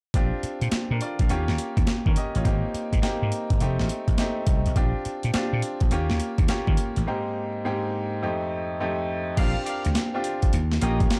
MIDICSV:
0, 0, Header, 1, 6, 480
1, 0, Start_track
1, 0, Key_signature, -2, "major"
1, 0, Tempo, 576923
1, 118, Time_signature, 4, 2, 24, 8
1, 9314, End_track
2, 0, Start_track
2, 0, Title_t, "Horn section"
2, 0, Program_c, 0, 61
2, 7795, Note_on_c, 0, 67, 94
2, 7798, Note_on_c, 0, 70, 88
2, 7798, Note_on_c, 0, 74, 88
2, 7800, Note_on_c, 0, 77, 110
2, 7972, Note_off_c, 0, 67, 0
2, 7974, Note_off_c, 0, 70, 0
2, 7974, Note_off_c, 0, 74, 0
2, 7975, Note_off_c, 0, 77, 0
2, 8035, Note_on_c, 0, 67, 77
2, 8036, Note_on_c, 0, 70, 66
2, 8039, Note_on_c, 0, 74, 71
2, 8040, Note_on_c, 0, 77, 82
2, 8213, Note_off_c, 0, 67, 0
2, 8213, Note_off_c, 0, 70, 0
2, 8215, Note_off_c, 0, 74, 0
2, 8215, Note_off_c, 0, 77, 0
2, 8994, Note_on_c, 0, 67, 74
2, 8995, Note_on_c, 0, 70, 64
2, 8998, Note_on_c, 0, 73, 64
2, 8999, Note_on_c, 0, 75, 79
2, 9172, Note_off_c, 0, 67, 0
2, 9173, Note_off_c, 0, 70, 0
2, 9174, Note_off_c, 0, 73, 0
2, 9175, Note_off_c, 0, 75, 0
2, 9314, End_track
3, 0, Start_track
3, 0, Title_t, "Grand piano"
3, 0, Program_c, 1, 0
3, 125, Note_on_c, 1, 60, 78
3, 128, Note_on_c, 1, 62, 75
3, 131, Note_on_c, 1, 65, 74
3, 135, Note_on_c, 1, 67, 86
3, 278, Control_c, 1, 64, 127
3, 363, Note_off_c, 1, 62, 0
3, 365, Note_off_c, 1, 65, 0
3, 366, Note_off_c, 1, 67, 0
3, 459, Note_off_c, 1, 60, 0
3, 763, Note_on_c, 1, 70, 59
3, 767, Note_on_c, 1, 62, 48
3, 839, Note_off_c, 1, 70, 0
3, 841, Note_off_c, 1, 62, 0
3, 847, Note_on_c, 1, 74, 62
3, 852, Note_on_c, 1, 65, 59
3, 990, Note_off_c, 1, 74, 0
3, 993, Note_off_c, 1, 65, 0
3, 1005, Note_on_c, 1, 77, 60
3, 1011, Note_on_c, 1, 69, 48
3, 1079, Note_on_c, 1, 58, 81
3, 1081, Note_on_c, 1, 61, 75
3, 1086, Note_on_c, 1, 65, 78
3, 1090, Note_on_c, 1, 67, 88
3, 1091, Control_c, 1, 64, 0
3, 1227, Note_off_c, 1, 77, 0
3, 1230, Note_off_c, 1, 69, 0
3, 1242, Control_c, 1, 64, 127
3, 1320, Note_off_c, 1, 61, 0
3, 1322, Note_off_c, 1, 65, 0
3, 1324, Note_off_c, 1, 67, 0
3, 1416, Note_off_c, 1, 58, 0
3, 1724, Note_on_c, 1, 70, 64
3, 1726, Note_on_c, 1, 61, 50
3, 1799, Note_off_c, 1, 70, 0
3, 1801, Note_off_c, 1, 61, 0
3, 1810, Note_on_c, 1, 75, 69
3, 1814, Note_on_c, 1, 67, 56
3, 1952, Note_off_c, 1, 75, 0
3, 1954, Note_off_c, 1, 67, 0
3, 1961, Note_on_c, 1, 73, 58
3, 1967, Note_on_c, 1, 65, 55
3, 2036, Note_on_c, 1, 58, 80
3, 2040, Note_on_c, 1, 60, 72
3, 2044, Note_on_c, 1, 63, 71
3, 2048, Note_on_c, 1, 67, 87
3, 2049, Control_c, 1, 64, 0
3, 2185, Note_off_c, 1, 73, 0
3, 2188, Note_off_c, 1, 65, 0
3, 2188, Control_c, 1, 64, 127
3, 2374, Note_off_c, 1, 58, 0
3, 2376, Note_off_c, 1, 60, 0
3, 2379, Note_off_c, 1, 63, 0
3, 2380, Note_off_c, 1, 67, 0
3, 2513, Note_on_c, 1, 58, 84
3, 2517, Note_on_c, 1, 60, 76
3, 2520, Note_on_c, 1, 63, 70
3, 2521, Note_on_c, 1, 67, 89
3, 2853, Note_off_c, 1, 58, 0
3, 2855, Note_off_c, 1, 60, 0
3, 2856, Note_off_c, 1, 63, 0
3, 2857, Note_off_c, 1, 67, 0
3, 2999, Note_on_c, 1, 57, 84
3, 3003, Note_on_c, 1, 60, 76
3, 3006, Note_on_c, 1, 63, 76
3, 3009, Control_c, 1, 64, 0
3, 3012, Note_on_c, 1, 67, 92
3, 3175, Control_c, 1, 64, 127
3, 3336, Note_off_c, 1, 57, 0
3, 3338, Note_off_c, 1, 60, 0
3, 3339, Note_off_c, 1, 63, 0
3, 3342, Note_off_c, 1, 67, 0
3, 3483, Note_on_c, 1, 57, 86
3, 3488, Note_on_c, 1, 60, 75
3, 3490, Note_on_c, 1, 63, 75
3, 3491, Note_on_c, 1, 67, 87
3, 3818, Note_off_c, 1, 57, 0
3, 3820, Note_off_c, 1, 60, 0
3, 3821, Note_off_c, 1, 63, 0
3, 3822, Note_off_c, 1, 67, 0
3, 3963, Note_on_c, 1, 60, 77
3, 3963, Note_on_c, 1, 62, 72
3, 3964, Note_on_c, 1, 65, 66
3, 3968, Control_c, 1, 64, 0
3, 3969, Note_on_c, 1, 67, 91
3, 4119, Control_c, 1, 64, 127
3, 4298, Note_off_c, 1, 60, 0
3, 4298, Note_off_c, 1, 62, 0
3, 4299, Note_off_c, 1, 65, 0
3, 4301, Note_off_c, 1, 67, 0
3, 4440, Note_on_c, 1, 60, 88
3, 4442, Note_on_c, 1, 62, 80
3, 4446, Note_on_c, 1, 65, 75
3, 4450, Note_on_c, 1, 67, 92
3, 4776, Note_off_c, 1, 60, 0
3, 4777, Note_off_c, 1, 62, 0
3, 4779, Note_off_c, 1, 65, 0
3, 4781, Note_off_c, 1, 67, 0
3, 4919, Note_on_c, 1, 58, 85
3, 4921, Note_on_c, 1, 61, 69
3, 4925, Note_on_c, 1, 65, 75
3, 4927, Control_c, 1, 64, 0
3, 4930, Note_on_c, 1, 67, 96
3, 5094, Control_c, 1, 64, 127
3, 5256, Note_off_c, 1, 58, 0
3, 5257, Note_off_c, 1, 61, 0
3, 5259, Note_off_c, 1, 65, 0
3, 5261, Note_off_c, 1, 67, 0
3, 5398, Note_on_c, 1, 58, 85
3, 5398, Note_on_c, 1, 61, 78
3, 5402, Note_on_c, 1, 65, 77
3, 5405, Note_on_c, 1, 67, 91
3, 5735, Note_off_c, 1, 58, 0
3, 5736, Note_off_c, 1, 61, 0
3, 5737, Note_off_c, 1, 65, 0
3, 5739, Note_off_c, 1, 67, 0
3, 5881, Note_on_c, 1, 44, 73
3, 5885, Note_on_c, 1, 58, 72
3, 5885, Note_on_c, 1, 60, 78
3, 5888, Control_c, 1, 64, 0
3, 5888, Note_on_c, 1, 63, 73
3, 5891, Note_on_c, 1, 67, 91
3, 6022, Control_c, 1, 64, 127
3, 6217, Note_off_c, 1, 44, 0
3, 6219, Note_off_c, 1, 58, 0
3, 6219, Note_off_c, 1, 60, 0
3, 6220, Note_off_c, 1, 63, 0
3, 6222, Note_off_c, 1, 67, 0
3, 6363, Note_on_c, 1, 44, 88
3, 6366, Note_on_c, 1, 58, 74
3, 6368, Note_on_c, 1, 60, 70
3, 6371, Note_on_c, 1, 63, 75
3, 6374, Note_on_c, 1, 67, 94
3, 6698, Note_off_c, 1, 44, 0
3, 6699, Note_off_c, 1, 58, 0
3, 6701, Note_off_c, 1, 60, 0
3, 6702, Note_off_c, 1, 63, 0
3, 6704, Note_off_c, 1, 67, 0
3, 6841, Note_on_c, 1, 41, 78
3, 6844, Note_on_c, 1, 57, 74
3, 6846, Note_on_c, 1, 60, 76
3, 6849, Note_on_c, 1, 63, 77
3, 6850, Control_c, 1, 64, 0
3, 6850, Note_on_c, 1, 67, 88
3, 6972, Control_c, 1, 64, 127
3, 7177, Note_off_c, 1, 41, 0
3, 7179, Note_off_c, 1, 57, 0
3, 7179, Note_off_c, 1, 60, 0
3, 7181, Note_off_c, 1, 63, 0
3, 7181, Note_off_c, 1, 67, 0
3, 7324, Note_on_c, 1, 57, 80
3, 7325, Note_on_c, 1, 41, 86
3, 7328, Note_on_c, 1, 60, 74
3, 7330, Note_on_c, 1, 63, 76
3, 7334, Note_on_c, 1, 67, 87
3, 7659, Note_off_c, 1, 41, 0
3, 7659, Note_off_c, 1, 57, 0
3, 7660, Note_off_c, 1, 60, 0
3, 7661, Note_off_c, 1, 63, 0
3, 7663, Note_off_c, 1, 67, 0
3, 7805, Note_on_c, 1, 60, 77
3, 7806, Note_on_c, 1, 62, 73
3, 7809, Control_c, 1, 64, 0
3, 7810, Note_on_c, 1, 65, 72
3, 7812, Note_on_c, 1, 67, 93
3, 7936, Control_c, 1, 64, 127
3, 8221, Note_off_c, 1, 60, 0
3, 8222, Note_off_c, 1, 62, 0
3, 8223, Note_off_c, 1, 65, 0
3, 8224, Note_off_c, 1, 67, 0
3, 8436, Note_on_c, 1, 60, 81
3, 8443, Note_on_c, 1, 62, 74
3, 8447, Note_on_c, 1, 65, 79
3, 8449, Note_on_c, 1, 67, 89
3, 8760, Note_off_c, 1, 60, 0
3, 8763, Note_off_c, 1, 62, 0
3, 8765, Note_off_c, 1, 65, 0
3, 8766, Note_off_c, 1, 67, 0
3, 8769, Control_c, 1, 64, 0
3, 8925, Control_c, 1, 64, 127
3, 8998, Note_on_c, 1, 58, 82
3, 9002, Note_on_c, 1, 61, 73
3, 9005, Note_on_c, 1, 65, 75
3, 9007, Note_on_c, 1, 67, 90
3, 9314, Note_off_c, 1, 58, 0
3, 9314, Note_off_c, 1, 61, 0
3, 9314, Note_off_c, 1, 65, 0
3, 9314, Note_off_c, 1, 67, 0
3, 9314, End_track
4, 0, Start_track
4, 0, Title_t, "Slap bass"
4, 0, Program_c, 2, 36
4, 119, Note_on_c, 2, 34, 109
4, 248, Note_off_c, 2, 34, 0
4, 512, Note_on_c, 2, 46, 93
4, 583, Note_off_c, 2, 46, 0
4, 754, Note_on_c, 2, 46, 95
4, 825, Note_off_c, 2, 46, 0
4, 996, Note_on_c, 2, 34, 74
4, 1066, Note_off_c, 2, 34, 0
4, 1080, Note_on_c, 2, 39, 105
4, 1209, Note_off_c, 2, 39, 0
4, 1235, Note_on_c, 2, 39, 86
4, 1305, Note_off_c, 2, 39, 0
4, 1474, Note_on_c, 2, 39, 88
4, 1545, Note_off_c, 2, 39, 0
4, 1716, Note_on_c, 2, 51, 85
4, 1786, Note_off_c, 2, 51, 0
4, 1960, Note_on_c, 2, 33, 87
4, 2028, Note_off_c, 2, 33, 0
4, 2041, Note_on_c, 2, 32, 99
4, 2170, Note_off_c, 2, 32, 0
4, 2436, Note_on_c, 2, 44, 86
4, 2506, Note_off_c, 2, 44, 0
4, 2682, Note_on_c, 2, 44, 92
4, 2749, Note_off_c, 2, 44, 0
4, 2917, Note_on_c, 2, 32, 81
4, 2986, Note_off_c, 2, 32, 0
4, 3007, Note_on_c, 2, 29, 100
4, 3133, Note_off_c, 2, 29, 0
4, 3164, Note_on_c, 2, 33, 79
4, 3230, Note_off_c, 2, 33, 0
4, 3394, Note_on_c, 2, 33, 83
4, 3465, Note_off_c, 2, 33, 0
4, 3718, Note_on_c, 2, 36, 71
4, 3848, Note_off_c, 2, 36, 0
4, 3880, Note_on_c, 2, 35, 83
4, 3948, Note_off_c, 2, 35, 0
4, 3961, Note_on_c, 2, 34, 107
4, 4089, Note_off_c, 2, 34, 0
4, 4362, Note_on_c, 2, 46, 81
4, 4429, Note_off_c, 2, 46, 0
4, 4600, Note_on_c, 2, 46, 84
4, 4668, Note_off_c, 2, 46, 0
4, 4836, Note_on_c, 2, 34, 84
4, 4906, Note_off_c, 2, 34, 0
4, 4924, Note_on_c, 2, 39, 92
4, 5051, Note_off_c, 2, 39, 0
4, 5078, Note_on_c, 2, 39, 88
4, 5147, Note_off_c, 2, 39, 0
4, 5313, Note_on_c, 2, 39, 94
4, 5384, Note_off_c, 2, 39, 0
4, 5554, Note_on_c, 2, 51, 88
4, 5625, Note_off_c, 2, 51, 0
4, 5798, Note_on_c, 2, 33, 86
4, 5867, Note_off_c, 2, 33, 0
4, 7801, Note_on_c, 2, 34, 99
4, 7930, Note_off_c, 2, 34, 0
4, 8202, Note_on_c, 2, 38, 85
4, 8269, Note_off_c, 2, 38, 0
4, 8766, Note_on_c, 2, 39, 94
4, 8963, Note_off_c, 2, 39, 0
4, 9004, Note_on_c, 2, 34, 90
4, 9202, Note_off_c, 2, 34, 0
4, 9314, End_track
5, 0, Start_track
5, 0, Title_t, "Muted slap bass strokes"
5, 360, Note_on_c, 9, 29, 43
5, 444, Note_off_c, 9, 29, 0
5, 600, Note_on_c, 9, 29, 46
5, 683, Note_off_c, 9, 29, 0
5, 2282, Note_on_c, 9, 29, 43
5, 2365, Note_off_c, 9, 29, 0
5, 2525, Note_on_c, 9, 29, 46
5, 2608, Note_off_c, 9, 29, 0
5, 4207, Note_on_c, 9, 29, 43
5, 4290, Note_off_c, 9, 29, 0
5, 4448, Note_on_c, 9, 29, 48
5, 4531, Note_off_c, 9, 29, 0
5, 9314, End_track
6, 0, Start_track
6, 0, Title_t, "Drums"
6, 116, Note_on_c, 9, 36, 93
6, 116, Note_on_c, 9, 42, 71
6, 200, Note_off_c, 9, 36, 0
6, 200, Note_off_c, 9, 42, 0
6, 359, Note_on_c, 9, 42, 64
6, 442, Note_off_c, 9, 42, 0
6, 511, Note_on_c, 9, 42, 50
6, 594, Note_off_c, 9, 42, 0
6, 595, Note_on_c, 9, 42, 70
6, 597, Note_on_c, 9, 38, 107
6, 678, Note_off_c, 9, 42, 0
6, 680, Note_off_c, 9, 38, 0
6, 837, Note_on_c, 9, 42, 71
6, 920, Note_off_c, 9, 42, 0
6, 991, Note_on_c, 9, 42, 44
6, 994, Note_on_c, 9, 36, 71
6, 1074, Note_off_c, 9, 42, 0
6, 1077, Note_off_c, 9, 36, 0
6, 1077, Note_on_c, 9, 42, 70
6, 1160, Note_off_c, 9, 42, 0
6, 1234, Note_on_c, 9, 38, 60
6, 1317, Note_off_c, 9, 38, 0
6, 1318, Note_on_c, 9, 42, 73
6, 1401, Note_off_c, 9, 42, 0
6, 1473, Note_on_c, 9, 36, 95
6, 1475, Note_on_c, 9, 42, 44
6, 1555, Note_off_c, 9, 42, 0
6, 1555, Note_on_c, 9, 42, 65
6, 1556, Note_off_c, 9, 36, 0
6, 1557, Note_on_c, 9, 38, 109
6, 1638, Note_off_c, 9, 42, 0
6, 1640, Note_off_c, 9, 38, 0
6, 1714, Note_on_c, 9, 36, 99
6, 1797, Note_off_c, 9, 36, 0
6, 1797, Note_on_c, 9, 42, 84
6, 1880, Note_off_c, 9, 42, 0
6, 1955, Note_on_c, 9, 42, 46
6, 2038, Note_off_c, 9, 42, 0
6, 2039, Note_on_c, 9, 36, 92
6, 2041, Note_on_c, 9, 42, 71
6, 2123, Note_off_c, 9, 36, 0
6, 2124, Note_off_c, 9, 42, 0
6, 2284, Note_on_c, 9, 42, 61
6, 2367, Note_off_c, 9, 42, 0
6, 2435, Note_on_c, 9, 36, 89
6, 2436, Note_on_c, 9, 42, 51
6, 2518, Note_off_c, 9, 36, 0
6, 2519, Note_off_c, 9, 42, 0
6, 2520, Note_on_c, 9, 42, 68
6, 2522, Note_on_c, 9, 38, 99
6, 2603, Note_off_c, 9, 42, 0
6, 2605, Note_off_c, 9, 38, 0
6, 2760, Note_on_c, 9, 42, 70
6, 2844, Note_off_c, 9, 42, 0
6, 2913, Note_on_c, 9, 42, 43
6, 2915, Note_on_c, 9, 36, 83
6, 2997, Note_off_c, 9, 42, 0
6, 2998, Note_off_c, 9, 36, 0
6, 2999, Note_on_c, 9, 42, 70
6, 3082, Note_off_c, 9, 42, 0
6, 3157, Note_on_c, 9, 38, 68
6, 3239, Note_on_c, 9, 42, 78
6, 3240, Note_off_c, 9, 38, 0
6, 3322, Note_off_c, 9, 42, 0
6, 3392, Note_on_c, 9, 36, 92
6, 3393, Note_on_c, 9, 42, 42
6, 3475, Note_off_c, 9, 36, 0
6, 3476, Note_off_c, 9, 42, 0
6, 3476, Note_on_c, 9, 42, 71
6, 3478, Note_on_c, 9, 38, 106
6, 3559, Note_off_c, 9, 42, 0
6, 3561, Note_off_c, 9, 38, 0
6, 3715, Note_on_c, 9, 42, 83
6, 3717, Note_on_c, 9, 36, 102
6, 3798, Note_off_c, 9, 42, 0
6, 3800, Note_off_c, 9, 36, 0
6, 3874, Note_on_c, 9, 42, 48
6, 3957, Note_off_c, 9, 42, 0
6, 3958, Note_on_c, 9, 42, 68
6, 3959, Note_on_c, 9, 36, 97
6, 4042, Note_off_c, 9, 36, 0
6, 4042, Note_off_c, 9, 42, 0
6, 4202, Note_on_c, 9, 42, 63
6, 4285, Note_off_c, 9, 42, 0
6, 4353, Note_on_c, 9, 42, 52
6, 4436, Note_off_c, 9, 42, 0
6, 4439, Note_on_c, 9, 42, 75
6, 4441, Note_on_c, 9, 38, 108
6, 4522, Note_off_c, 9, 42, 0
6, 4524, Note_off_c, 9, 38, 0
6, 4679, Note_on_c, 9, 42, 71
6, 4762, Note_off_c, 9, 42, 0
6, 4829, Note_on_c, 9, 42, 41
6, 4834, Note_on_c, 9, 36, 78
6, 4912, Note_off_c, 9, 42, 0
6, 4917, Note_off_c, 9, 36, 0
6, 4917, Note_on_c, 9, 42, 68
6, 5000, Note_off_c, 9, 42, 0
6, 5072, Note_on_c, 9, 38, 66
6, 5155, Note_on_c, 9, 42, 72
6, 5156, Note_off_c, 9, 38, 0
6, 5238, Note_off_c, 9, 42, 0
6, 5310, Note_on_c, 9, 42, 44
6, 5311, Note_on_c, 9, 36, 94
6, 5393, Note_off_c, 9, 42, 0
6, 5394, Note_off_c, 9, 36, 0
6, 5394, Note_on_c, 9, 42, 67
6, 5396, Note_on_c, 9, 38, 114
6, 5477, Note_off_c, 9, 42, 0
6, 5479, Note_off_c, 9, 38, 0
6, 5553, Note_on_c, 9, 36, 94
6, 5635, Note_on_c, 9, 42, 84
6, 5636, Note_off_c, 9, 36, 0
6, 5718, Note_off_c, 9, 42, 0
6, 5793, Note_on_c, 9, 42, 46
6, 5877, Note_off_c, 9, 42, 0
6, 7799, Note_on_c, 9, 36, 96
6, 7799, Note_on_c, 9, 42, 68
6, 7799, Note_on_c, 9, 49, 88
6, 7882, Note_off_c, 9, 36, 0
6, 7882, Note_off_c, 9, 42, 0
6, 7882, Note_off_c, 9, 49, 0
6, 8041, Note_on_c, 9, 42, 69
6, 8124, Note_off_c, 9, 42, 0
6, 8192, Note_on_c, 9, 42, 54
6, 8275, Note_off_c, 9, 42, 0
6, 8278, Note_on_c, 9, 42, 71
6, 8280, Note_on_c, 9, 38, 107
6, 8361, Note_off_c, 9, 42, 0
6, 8363, Note_off_c, 9, 38, 0
6, 8519, Note_on_c, 9, 42, 70
6, 8602, Note_off_c, 9, 42, 0
6, 8672, Note_on_c, 9, 42, 45
6, 8676, Note_on_c, 9, 36, 73
6, 8755, Note_off_c, 9, 42, 0
6, 8759, Note_off_c, 9, 36, 0
6, 8759, Note_on_c, 9, 42, 71
6, 8842, Note_off_c, 9, 42, 0
6, 8915, Note_on_c, 9, 38, 69
6, 8998, Note_on_c, 9, 42, 78
6, 8999, Note_off_c, 9, 38, 0
6, 9081, Note_off_c, 9, 42, 0
6, 9154, Note_on_c, 9, 36, 99
6, 9155, Note_on_c, 9, 42, 43
6, 9237, Note_off_c, 9, 36, 0
6, 9238, Note_off_c, 9, 42, 0
6, 9238, Note_on_c, 9, 42, 69
6, 9240, Note_on_c, 9, 38, 113
6, 9314, Note_off_c, 9, 38, 0
6, 9314, Note_off_c, 9, 42, 0
6, 9314, End_track
0, 0, End_of_file